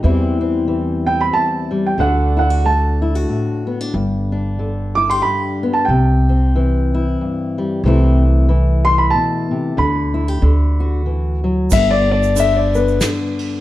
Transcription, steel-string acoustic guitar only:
0.03 1.32 E2 medium
0.03 0.66 E3 medium
0.03 1.70 G3 medium
0.03 0.40 C4 medium
0.03 1.06 E4 medium
0.41 1.95 C4 medium
0.68 1.95 E3 medium
1.07 1.99 E4 medium
1.33 1.99 E2 soft
1.71 1.98 G3 soft
1.99 4.58 D3 medium
1.99 2.64 A3 medium
1.99 3.66 D4 medium
1.99 2.36 F#4 medium
2.37 2.50 E4 medium
2.50 3.01 F#4 soft
2.65 3.91 A3 soft
3.02 3.15 E4 medium
3.15 3.94 F#4 soft
3.29 3.94 A2 soft
3.67 3.81 B3 soft
3.81 3.94 D4 soft
3.94 5.24 G2 medium
4.32 5.86 D4 soft
4.59 5.89 D3 soft
4.97 5.10 E4 medium
5.11 5.89 G4 soft
5.25 5.86 G2 soft
5.63 5.86 B3 medium
5.90 6.54 C3 medium
6.29 7.81 C4 soft
6.55 7.81 E3 medium
6.94 7.85 E4 medium
7.21 7.81 G2 medium
7.58 7.84 G3 medium
7.85 8.49 C3 medium
7.85 8.47 E3 medium
7.85 9.76 A3 medium
7.85 8.22 C4 medium
7.85 8.85 E4 medium
8.49 9.75 E3 medium
8.86 9.78 E4 medium
9.14 9.51 B2 medium
9.51 9.78 C3 medium
9.77 10.41 D3 medium
10.14 10.28 E4 medium
10.28 10.42 G4 soft
10.42 11.05 D3 medium
10.80 11.69 F#4 medium
11.06 11.43 E3 soft
11.44 11.72 F#3 medium
11.71 13.61 G2 medium
12.10 13.61 D4 medium
12.36 13.01 D3 medium
12.75 13.61 B3 medium
13.02 13.61 D3 soft

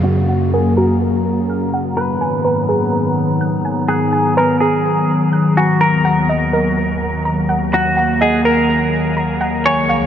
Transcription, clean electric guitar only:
0.04 0.50 F#4 medium
0.54 0.76 G#4 medium
0.77 1.45 A#4 medium
1.97 3.85 B4 loud
3.88 4.34 G#4 medium
4.38 4.60 A#4 medium
4.60 5.53 G#4 medium
5.57 5.80 F#4 medium
5.81 7.69 A#4 loud
7.74 8.19 F#4 loud
8.22 8.44 G#4 medium
8.45 9.13 A#4 medium
9.66 10.06 C#5 loud

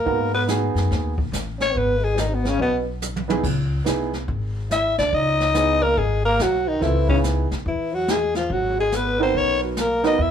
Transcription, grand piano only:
0.05 0.30 B3 medium
0.05 0.30 D#4 medium
0.05 0.31 F#4 medium
0.05 0.31 A#4 medium
0.47 1.12 B3 medium
0.47 1.12 D#4 medium
0.47 1.12 F#4 medium
0.47 1.12 G#4 medium
3.28 3.42 B3 medium
3.28 3.42 D#4 medium
3.28 3.42 E4 medium
3.28 3.43 G#4 medium
3.85 4.10 B3 medium
3.85 4.10 D#4 soft
3.85 4.10 E4 medium
3.85 4.11 G#4 medium
5.54 5.79 B3 medium
5.54 5.79 D#4 soft
5.54 5.79 E4 soft
5.54 5.80 G#4 medium
6.80 7.05 C4 medium
6.80 7.05 E4 soft
6.80 7.06 F4 medium
6.80 7.06 A4 medium
7.07 7.45 B3 medium
7.07 7.45 D#4 medium
7.07 7.45 E4 medium
7.07 7.46 G#4 medium
9.19 9.73 B3 medium
9.19 9.74 D#4 medium
9.19 9.74 F#4 medium
9.19 9.74 A#4 medium
10.03 10.17 B3 medium
10.03 10.17 D#4 medium
10.03 10.18 F#4 medium
10.03 10.18 A#4 medium

